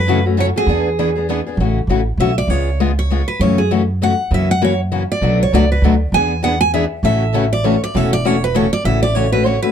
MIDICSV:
0, 0, Header, 1, 5, 480
1, 0, Start_track
1, 0, Key_signature, 3, "major"
1, 0, Tempo, 302115
1, 1087, Time_signature, 3, 2, 24, 8
1, 15437, End_track
2, 0, Start_track
2, 0, Title_t, "Steel-string acoustic guitar"
2, 0, Program_c, 0, 25
2, 0, Note_on_c, 0, 71, 94
2, 379, Note_off_c, 0, 71, 0
2, 642, Note_on_c, 0, 73, 81
2, 721, Note_off_c, 0, 73, 0
2, 914, Note_on_c, 0, 68, 77
2, 1998, Note_off_c, 0, 68, 0
2, 3502, Note_on_c, 0, 76, 74
2, 3763, Note_off_c, 0, 76, 0
2, 3780, Note_on_c, 0, 74, 79
2, 3969, Note_off_c, 0, 74, 0
2, 3969, Note_on_c, 0, 73, 76
2, 4448, Note_off_c, 0, 73, 0
2, 4747, Note_on_c, 0, 73, 77
2, 5182, Note_off_c, 0, 73, 0
2, 5207, Note_on_c, 0, 71, 75
2, 5403, Note_off_c, 0, 71, 0
2, 5414, Note_on_c, 0, 73, 84
2, 5679, Note_off_c, 0, 73, 0
2, 5691, Note_on_c, 0, 68, 66
2, 5885, Note_off_c, 0, 68, 0
2, 6408, Note_on_c, 0, 78, 86
2, 6836, Note_off_c, 0, 78, 0
2, 6899, Note_on_c, 0, 76, 78
2, 7142, Note_off_c, 0, 76, 0
2, 7166, Note_on_c, 0, 78, 97
2, 7343, Note_off_c, 0, 78, 0
2, 7379, Note_on_c, 0, 73, 69
2, 7623, Note_off_c, 0, 73, 0
2, 8129, Note_on_c, 0, 74, 86
2, 8554, Note_off_c, 0, 74, 0
2, 8622, Note_on_c, 0, 73, 78
2, 8791, Note_off_c, 0, 73, 0
2, 8813, Note_on_c, 0, 74, 82
2, 9059, Note_off_c, 0, 74, 0
2, 9083, Note_on_c, 0, 71, 62
2, 9262, Note_off_c, 0, 71, 0
2, 9759, Note_on_c, 0, 80, 98
2, 10191, Note_off_c, 0, 80, 0
2, 10229, Note_on_c, 0, 78, 83
2, 10487, Note_off_c, 0, 78, 0
2, 10496, Note_on_c, 0, 80, 104
2, 10688, Note_off_c, 0, 80, 0
2, 10703, Note_on_c, 0, 76, 75
2, 10865, Note_off_c, 0, 76, 0
2, 11197, Note_on_c, 0, 76, 82
2, 11887, Note_off_c, 0, 76, 0
2, 11958, Note_on_c, 0, 74, 83
2, 12157, Note_off_c, 0, 74, 0
2, 12157, Note_on_c, 0, 73, 74
2, 12412, Note_off_c, 0, 73, 0
2, 12450, Note_on_c, 0, 74, 87
2, 12656, Note_off_c, 0, 74, 0
2, 12656, Note_on_c, 0, 76, 101
2, 12901, Note_off_c, 0, 76, 0
2, 12916, Note_on_c, 0, 74, 99
2, 13128, Note_off_c, 0, 74, 0
2, 13128, Note_on_c, 0, 73, 84
2, 13377, Note_off_c, 0, 73, 0
2, 13408, Note_on_c, 0, 71, 92
2, 13585, Note_off_c, 0, 71, 0
2, 13594, Note_on_c, 0, 73, 75
2, 13851, Note_off_c, 0, 73, 0
2, 13867, Note_on_c, 0, 74, 98
2, 14054, Note_off_c, 0, 74, 0
2, 14065, Note_on_c, 0, 76, 95
2, 14326, Note_off_c, 0, 76, 0
2, 14340, Note_on_c, 0, 74, 83
2, 14535, Note_off_c, 0, 74, 0
2, 14535, Note_on_c, 0, 73, 77
2, 14801, Note_off_c, 0, 73, 0
2, 14815, Note_on_c, 0, 71, 82
2, 15030, Note_off_c, 0, 71, 0
2, 15030, Note_on_c, 0, 73, 76
2, 15285, Note_off_c, 0, 73, 0
2, 15292, Note_on_c, 0, 71, 84
2, 15437, Note_off_c, 0, 71, 0
2, 15437, End_track
3, 0, Start_track
3, 0, Title_t, "Steel-string acoustic guitar"
3, 0, Program_c, 1, 25
3, 102, Note_on_c, 1, 54, 89
3, 111, Note_on_c, 1, 64, 85
3, 127, Note_on_c, 1, 69, 89
3, 278, Note_off_c, 1, 54, 0
3, 283, Note_off_c, 1, 64, 0
3, 291, Note_off_c, 1, 69, 0
3, 594, Note_on_c, 1, 54, 86
3, 615, Note_on_c, 1, 64, 91
3, 621, Note_on_c, 1, 69, 78
3, 764, Note_off_c, 1, 54, 0
3, 775, Note_off_c, 1, 64, 0
3, 778, Note_off_c, 1, 69, 0
3, 1123, Note_on_c, 1, 71, 77
3, 1406, Note_off_c, 1, 71, 0
3, 1577, Note_on_c, 1, 71, 89
3, 1736, Note_off_c, 1, 71, 0
3, 2064, Note_on_c, 1, 71, 76
3, 2220, Note_off_c, 1, 71, 0
3, 8318, Note_on_c, 1, 71, 74
3, 8604, Note_off_c, 1, 71, 0
3, 8809, Note_on_c, 1, 71, 86
3, 8953, Note_off_c, 1, 71, 0
3, 9293, Note_on_c, 1, 71, 96
3, 9435, Note_off_c, 1, 71, 0
3, 9795, Note_on_c, 1, 71, 75
3, 10063, Note_off_c, 1, 71, 0
3, 10254, Note_on_c, 1, 71, 91
3, 10396, Note_off_c, 1, 71, 0
3, 10730, Note_on_c, 1, 71, 93
3, 10873, Note_off_c, 1, 71, 0
3, 11195, Note_on_c, 1, 69, 78
3, 11483, Note_off_c, 1, 69, 0
3, 11654, Note_on_c, 1, 69, 86
3, 11815, Note_off_c, 1, 69, 0
3, 12157, Note_on_c, 1, 69, 87
3, 12307, Note_off_c, 1, 69, 0
3, 12646, Note_on_c, 1, 69, 82
3, 12929, Note_off_c, 1, 69, 0
3, 13143, Note_on_c, 1, 69, 99
3, 13280, Note_off_c, 1, 69, 0
3, 13623, Note_on_c, 1, 69, 97
3, 13760, Note_off_c, 1, 69, 0
3, 15437, End_track
4, 0, Start_track
4, 0, Title_t, "Steel-string acoustic guitar"
4, 0, Program_c, 2, 25
4, 128, Note_on_c, 2, 49, 96
4, 138, Note_on_c, 2, 52, 98
4, 145, Note_on_c, 2, 61, 96
4, 145, Note_on_c, 2, 66, 101
4, 147, Note_on_c, 2, 57, 94
4, 292, Note_off_c, 2, 49, 0
4, 296, Note_off_c, 2, 52, 0
4, 300, Note_off_c, 2, 61, 0
4, 300, Note_off_c, 2, 66, 0
4, 301, Note_off_c, 2, 57, 0
4, 409, Note_on_c, 2, 66, 54
4, 416, Note_on_c, 2, 61, 54
4, 426, Note_on_c, 2, 57, 46
4, 576, Note_off_c, 2, 57, 0
4, 580, Note_off_c, 2, 66, 0
4, 585, Note_off_c, 2, 61, 0
4, 589, Note_on_c, 2, 52, 81
4, 595, Note_on_c, 2, 49, 75
4, 595, Note_on_c, 2, 57, 76
4, 599, Note_on_c, 2, 66, 92
4, 604, Note_on_c, 2, 61, 84
4, 762, Note_off_c, 2, 52, 0
4, 765, Note_off_c, 2, 49, 0
4, 765, Note_off_c, 2, 57, 0
4, 767, Note_off_c, 2, 66, 0
4, 770, Note_off_c, 2, 61, 0
4, 890, Note_on_c, 2, 66, 57
4, 899, Note_on_c, 2, 61, 49
4, 903, Note_on_c, 2, 57, 51
4, 1082, Note_off_c, 2, 66, 0
4, 1085, Note_off_c, 2, 57, 0
4, 1085, Note_off_c, 2, 61, 0
4, 1086, Note_on_c, 2, 52, 75
4, 1091, Note_on_c, 2, 59, 71
4, 1092, Note_on_c, 2, 62, 71
4, 1102, Note_on_c, 2, 68, 81
4, 1387, Note_off_c, 2, 52, 0
4, 1390, Note_off_c, 2, 59, 0
4, 1391, Note_off_c, 2, 62, 0
4, 1395, Note_off_c, 2, 68, 0
4, 1569, Note_on_c, 2, 59, 79
4, 1573, Note_on_c, 2, 52, 93
4, 1573, Note_on_c, 2, 62, 95
4, 1583, Note_on_c, 2, 68, 97
4, 1732, Note_off_c, 2, 59, 0
4, 1734, Note_off_c, 2, 52, 0
4, 1734, Note_off_c, 2, 62, 0
4, 1739, Note_off_c, 2, 68, 0
4, 1836, Note_on_c, 2, 68, 51
4, 1851, Note_on_c, 2, 62, 50
4, 1869, Note_on_c, 2, 59, 47
4, 2035, Note_off_c, 2, 68, 0
4, 2039, Note_off_c, 2, 59, 0
4, 2042, Note_off_c, 2, 62, 0
4, 2057, Note_on_c, 2, 52, 82
4, 2058, Note_on_c, 2, 59, 82
4, 2064, Note_on_c, 2, 62, 92
4, 2067, Note_on_c, 2, 68, 88
4, 2216, Note_off_c, 2, 52, 0
4, 2216, Note_off_c, 2, 59, 0
4, 2219, Note_off_c, 2, 62, 0
4, 2221, Note_off_c, 2, 68, 0
4, 2328, Note_on_c, 2, 68, 57
4, 2336, Note_on_c, 2, 62, 52
4, 2355, Note_on_c, 2, 59, 48
4, 2521, Note_off_c, 2, 68, 0
4, 2525, Note_off_c, 2, 62, 0
4, 2534, Note_off_c, 2, 59, 0
4, 2543, Note_on_c, 2, 49, 61
4, 2546, Note_on_c, 2, 61, 67
4, 2549, Note_on_c, 2, 52, 61
4, 2549, Note_on_c, 2, 57, 70
4, 2555, Note_on_c, 2, 66, 73
4, 2836, Note_off_c, 2, 49, 0
4, 2837, Note_off_c, 2, 61, 0
4, 2839, Note_off_c, 2, 52, 0
4, 2839, Note_off_c, 2, 57, 0
4, 2842, Note_off_c, 2, 66, 0
4, 3010, Note_on_c, 2, 49, 88
4, 3019, Note_on_c, 2, 52, 77
4, 3020, Note_on_c, 2, 57, 82
4, 3026, Note_on_c, 2, 61, 82
4, 3026, Note_on_c, 2, 66, 93
4, 3173, Note_off_c, 2, 49, 0
4, 3177, Note_off_c, 2, 52, 0
4, 3177, Note_off_c, 2, 57, 0
4, 3180, Note_off_c, 2, 61, 0
4, 3181, Note_off_c, 2, 66, 0
4, 3493, Note_on_c, 2, 49, 80
4, 3493, Note_on_c, 2, 52, 82
4, 3497, Note_on_c, 2, 61, 77
4, 3504, Note_on_c, 2, 57, 77
4, 3511, Note_on_c, 2, 66, 100
4, 3654, Note_off_c, 2, 49, 0
4, 3654, Note_off_c, 2, 52, 0
4, 3656, Note_off_c, 2, 61, 0
4, 3660, Note_off_c, 2, 57, 0
4, 3663, Note_off_c, 2, 66, 0
4, 3970, Note_on_c, 2, 49, 62
4, 3971, Note_on_c, 2, 59, 72
4, 3975, Note_on_c, 2, 56, 60
4, 3976, Note_on_c, 2, 65, 71
4, 3976, Note_on_c, 2, 68, 62
4, 4270, Note_off_c, 2, 49, 0
4, 4270, Note_off_c, 2, 59, 0
4, 4272, Note_off_c, 2, 56, 0
4, 4273, Note_off_c, 2, 65, 0
4, 4273, Note_off_c, 2, 68, 0
4, 4450, Note_on_c, 2, 49, 84
4, 4451, Note_on_c, 2, 56, 93
4, 4452, Note_on_c, 2, 65, 91
4, 4454, Note_on_c, 2, 59, 83
4, 4460, Note_on_c, 2, 68, 104
4, 4613, Note_off_c, 2, 49, 0
4, 4613, Note_off_c, 2, 56, 0
4, 4614, Note_off_c, 2, 65, 0
4, 4615, Note_off_c, 2, 59, 0
4, 4618, Note_off_c, 2, 68, 0
4, 4933, Note_on_c, 2, 49, 82
4, 4944, Note_on_c, 2, 56, 77
4, 4946, Note_on_c, 2, 59, 80
4, 4954, Note_on_c, 2, 65, 87
4, 4955, Note_on_c, 2, 68, 85
4, 5094, Note_off_c, 2, 49, 0
4, 5100, Note_off_c, 2, 56, 0
4, 5101, Note_off_c, 2, 59, 0
4, 5105, Note_off_c, 2, 65, 0
4, 5105, Note_off_c, 2, 68, 0
4, 5434, Note_on_c, 2, 49, 72
4, 5439, Note_on_c, 2, 57, 66
4, 5440, Note_on_c, 2, 66, 62
4, 5442, Note_on_c, 2, 52, 71
4, 5444, Note_on_c, 2, 61, 75
4, 5722, Note_off_c, 2, 49, 0
4, 5724, Note_off_c, 2, 57, 0
4, 5725, Note_off_c, 2, 66, 0
4, 5726, Note_off_c, 2, 52, 0
4, 5727, Note_off_c, 2, 61, 0
4, 5893, Note_on_c, 2, 49, 94
4, 5895, Note_on_c, 2, 57, 93
4, 5897, Note_on_c, 2, 52, 83
4, 5901, Note_on_c, 2, 66, 101
4, 5905, Note_on_c, 2, 61, 94
4, 6054, Note_off_c, 2, 49, 0
4, 6055, Note_off_c, 2, 57, 0
4, 6057, Note_off_c, 2, 52, 0
4, 6058, Note_off_c, 2, 66, 0
4, 6060, Note_off_c, 2, 61, 0
4, 6383, Note_on_c, 2, 49, 81
4, 6389, Note_on_c, 2, 52, 84
4, 6394, Note_on_c, 2, 57, 87
4, 6394, Note_on_c, 2, 61, 83
4, 6397, Note_on_c, 2, 66, 94
4, 6539, Note_off_c, 2, 49, 0
4, 6542, Note_off_c, 2, 52, 0
4, 6545, Note_off_c, 2, 57, 0
4, 6545, Note_off_c, 2, 61, 0
4, 6546, Note_off_c, 2, 66, 0
4, 6843, Note_on_c, 2, 49, 70
4, 6852, Note_on_c, 2, 58, 67
4, 6853, Note_on_c, 2, 52, 67
4, 6857, Note_on_c, 2, 66, 74
4, 6868, Note_on_c, 2, 61, 68
4, 7147, Note_off_c, 2, 49, 0
4, 7151, Note_off_c, 2, 58, 0
4, 7152, Note_off_c, 2, 52, 0
4, 7153, Note_off_c, 2, 66, 0
4, 7159, Note_off_c, 2, 61, 0
4, 7333, Note_on_c, 2, 49, 85
4, 7336, Note_on_c, 2, 58, 94
4, 7337, Note_on_c, 2, 52, 90
4, 7343, Note_on_c, 2, 61, 105
4, 7345, Note_on_c, 2, 66, 99
4, 7494, Note_off_c, 2, 49, 0
4, 7496, Note_off_c, 2, 58, 0
4, 7497, Note_off_c, 2, 52, 0
4, 7499, Note_off_c, 2, 61, 0
4, 7500, Note_off_c, 2, 66, 0
4, 7810, Note_on_c, 2, 49, 83
4, 7813, Note_on_c, 2, 52, 88
4, 7814, Note_on_c, 2, 58, 81
4, 7824, Note_on_c, 2, 66, 91
4, 7825, Note_on_c, 2, 61, 92
4, 7973, Note_off_c, 2, 49, 0
4, 7975, Note_off_c, 2, 52, 0
4, 7975, Note_off_c, 2, 58, 0
4, 7980, Note_off_c, 2, 66, 0
4, 7981, Note_off_c, 2, 61, 0
4, 8294, Note_on_c, 2, 54, 69
4, 8295, Note_on_c, 2, 47, 65
4, 8304, Note_on_c, 2, 57, 70
4, 8304, Note_on_c, 2, 62, 69
4, 8307, Note_on_c, 2, 66, 78
4, 8592, Note_off_c, 2, 54, 0
4, 8593, Note_off_c, 2, 47, 0
4, 8597, Note_off_c, 2, 57, 0
4, 8597, Note_off_c, 2, 62, 0
4, 8599, Note_off_c, 2, 66, 0
4, 8790, Note_on_c, 2, 47, 80
4, 8794, Note_on_c, 2, 57, 100
4, 8800, Note_on_c, 2, 54, 90
4, 8802, Note_on_c, 2, 62, 87
4, 8810, Note_on_c, 2, 66, 103
4, 8943, Note_off_c, 2, 47, 0
4, 8945, Note_off_c, 2, 57, 0
4, 8948, Note_off_c, 2, 54, 0
4, 8949, Note_off_c, 2, 62, 0
4, 8953, Note_off_c, 2, 66, 0
4, 9273, Note_on_c, 2, 47, 85
4, 9279, Note_on_c, 2, 57, 81
4, 9280, Note_on_c, 2, 54, 81
4, 9283, Note_on_c, 2, 66, 94
4, 9287, Note_on_c, 2, 62, 81
4, 9425, Note_off_c, 2, 47, 0
4, 9428, Note_off_c, 2, 54, 0
4, 9428, Note_off_c, 2, 57, 0
4, 9430, Note_off_c, 2, 66, 0
4, 9432, Note_off_c, 2, 62, 0
4, 9753, Note_on_c, 2, 52, 70
4, 9753, Note_on_c, 2, 59, 70
4, 9755, Note_on_c, 2, 62, 70
4, 9764, Note_on_c, 2, 68, 72
4, 10042, Note_off_c, 2, 52, 0
4, 10042, Note_off_c, 2, 59, 0
4, 10043, Note_off_c, 2, 62, 0
4, 10047, Note_off_c, 2, 68, 0
4, 10209, Note_on_c, 2, 52, 91
4, 10221, Note_on_c, 2, 59, 95
4, 10226, Note_on_c, 2, 62, 102
4, 10228, Note_on_c, 2, 68, 92
4, 10373, Note_off_c, 2, 52, 0
4, 10379, Note_off_c, 2, 59, 0
4, 10381, Note_off_c, 2, 62, 0
4, 10382, Note_off_c, 2, 68, 0
4, 10706, Note_on_c, 2, 52, 92
4, 10711, Note_on_c, 2, 59, 81
4, 10715, Note_on_c, 2, 62, 102
4, 10715, Note_on_c, 2, 68, 91
4, 10861, Note_off_c, 2, 52, 0
4, 10864, Note_off_c, 2, 59, 0
4, 10866, Note_off_c, 2, 62, 0
4, 10866, Note_off_c, 2, 68, 0
4, 11189, Note_on_c, 2, 49, 74
4, 11192, Note_on_c, 2, 61, 75
4, 11193, Note_on_c, 2, 52, 67
4, 11197, Note_on_c, 2, 57, 76
4, 11207, Note_on_c, 2, 66, 81
4, 11480, Note_off_c, 2, 49, 0
4, 11481, Note_off_c, 2, 61, 0
4, 11482, Note_off_c, 2, 52, 0
4, 11484, Note_off_c, 2, 57, 0
4, 11489, Note_off_c, 2, 66, 0
4, 11664, Note_on_c, 2, 49, 101
4, 11667, Note_on_c, 2, 52, 87
4, 11667, Note_on_c, 2, 57, 94
4, 11676, Note_on_c, 2, 66, 105
4, 11680, Note_on_c, 2, 61, 102
4, 11821, Note_off_c, 2, 49, 0
4, 11822, Note_off_c, 2, 52, 0
4, 11822, Note_off_c, 2, 57, 0
4, 11827, Note_off_c, 2, 66, 0
4, 11828, Note_off_c, 2, 61, 0
4, 12141, Note_on_c, 2, 49, 82
4, 12145, Note_on_c, 2, 52, 90
4, 12150, Note_on_c, 2, 57, 90
4, 12154, Note_on_c, 2, 66, 92
4, 12158, Note_on_c, 2, 61, 86
4, 12299, Note_off_c, 2, 49, 0
4, 12301, Note_off_c, 2, 52, 0
4, 12304, Note_off_c, 2, 57, 0
4, 12306, Note_off_c, 2, 66, 0
4, 12307, Note_off_c, 2, 61, 0
4, 12612, Note_on_c, 2, 49, 70
4, 12623, Note_on_c, 2, 61, 82
4, 12625, Note_on_c, 2, 52, 75
4, 12625, Note_on_c, 2, 57, 73
4, 12633, Note_on_c, 2, 66, 71
4, 12912, Note_off_c, 2, 49, 0
4, 12917, Note_off_c, 2, 61, 0
4, 12918, Note_off_c, 2, 57, 0
4, 12919, Note_off_c, 2, 52, 0
4, 12922, Note_off_c, 2, 66, 0
4, 13105, Note_on_c, 2, 49, 94
4, 13107, Note_on_c, 2, 52, 94
4, 13113, Note_on_c, 2, 57, 100
4, 13113, Note_on_c, 2, 61, 100
4, 13118, Note_on_c, 2, 66, 97
4, 13261, Note_off_c, 2, 49, 0
4, 13262, Note_off_c, 2, 52, 0
4, 13265, Note_off_c, 2, 57, 0
4, 13265, Note_off_c, 2, 61, 0
4, 13268, Note_off_c, 2, 66, 0
4, 13577, Note_on_c, 2, 49, 89
4, 13578, Note_on_c, 2, 57, 99
4, 13579, Note_on_c, 2, 52, 89
4, 13586, Note_on_c, 2, 61, 102
4, 13587, Note_on_c, 2, 66, 96
4, 13737, Note_off_c, 2, 49, 0
4, 13738, Note_off_c, 2, 57, 0
4, 13739, Note_off_c, 2, 52, 0
4, 13742, Note_off_c, 2, 61, 0
4, 13742, Note_off_c, 2, 66, 0
4, 14081, Note_on_c, 2, 49, 56
4, 14085, Note_on_c, 2, 57, 69
4, 14086, Note_on_c, 2, 61, 64
4, 14089, Note_on_c, 2, 52, 67
4, 14091, Note_on_c, 2, 66, 68
4, 14367, Note_off_c, 2, 49, 0
4, 14369, Note_off_c, 2, 57, 0
4, 14369, Note_off_c, 2, 61, 0
4, 14371, Note_off_c, 2, 52, 0
4, 14372, Note_off_c, 2, 66, 0
4, 14542, Note_on_c, 2, 49, 79
4, 14548, Note_on_c, 2, 52, 88
4, 14555, Note_on_c, 2, 57, 93
4, 14555, Note_on_c, 2, 66, 86
4, 14557, Note_on_c, 2, 61, 91
4, 14700, Note_off_c, 2, 49, 0
4, 14703, Note_off_c, 2, 52, 0
4, 14707, Note_off_c, 2, 57, 0
4, 14707, Note_off_c, 2, 66, 0
4, 14708, Note_off_c, 2, 61, 0
4, 14809, Note_on_c, 2, 66, 57
4, 14828, Note_on_c, 2, 61, 50
4, 14833, Note_on_c, 2, 57, 47
4, 15003, Note_off_c, 2, 66, 0
4, 15010, Note_off_c, 2, 57, 0
4, 15013, Note_off_c, 2, 61, 0
4, 15026, Note_on_c, 2, 52, 88
4, 15029, Note_on_c, 2, 57, 81
4, 15031, Note_on_c, 2, 49, 84
4, 15039, Note_on_c, 2, 61, 89
4, 15045, Note_on_c, 2, 66, 92
4, 15182, Note_off_c, 2, 52, 0
4, 15184, Note_off_c, 2, 57, 0
4, 15185, Note_off_c, 2, 49, 0
4, 15189, Note_off_c, 2, 61, 0
4, 15192, Note_off_c, 2, 66, 0
4, 15295, Note_on_c, 2, 66, 61
4, 15310, Note_on_c, 2, 61, 55
4, 15319, Note_on_c, 2, 57, 50
4, 15437, Note_off_c, 2, 57, 0
4, 15437, Note_off_c, 2, 61, 0
4, 15437, Note_off_c, 2, 66, 0
4, 15437, End_track
5, 0, Start_track
5, 0, Title_t, "Upright bass"
5, 0, Program_c, 3, 32
5, 0, Note_on_c, 3, 42, 86
5, 792, Note_off_c, 3, 42, 0
5, 1058, Note_on_c, 3, 40, 89
5, 2221, Note_off_c, 3, 40, 0
5, 2496, Note_on_c, 3, 33, 85
5, 2892, Note_off_c, 3, 33, 0
5, 2974, Note_on_c, 3, 33, 77
5, 3396, Note_off_c, 3, 33, 0
5, 3455, Note_on_c, 3, 35, 81
5, 3877, Note_off_c, 3, 35, 0
5, 3935, Note_on_c, 3, 37, 82
5, 5100, Note_off_c, 3, 37, 0
5, 5395, Note_on_c, 3, 42, 89
5, 6552, Note_off_c, 3, 42, 0
5, 6844, Note_on_c, 3, 42, 88
5, 7998, Note_off_c, 3, 42, 0
5, 8283, Note_on_c, 3, 35, 86
5, 8669, Note_off_c, 3, 35, 0
5, 8777, Note_on_c, 3, 37, 78
5, 9181, Note_off_c, 3, 37, 0
5, 9241, Note_on_c, 3, 38, 84
5, 9652, Note_off_c, 3, 38, 0
5, 9724, Note_on_c, 3, 40, 89
5, 10878, Note_off_c, 3, 40, 0
5, 11166, Note_on_c, 3, 33, 88
5, 12319, Note_off_c, 3, 33, 0
5, 12627, Note_on_c, 3, 28, 86
5, 13772, Note_off_c, 3, 28, 0
5, 14053, Note_on_c, 3, 33, 89
5, 15205, Note_off_c, 3, 33, 0
5, 15437, End_track
0, 0, End_of_file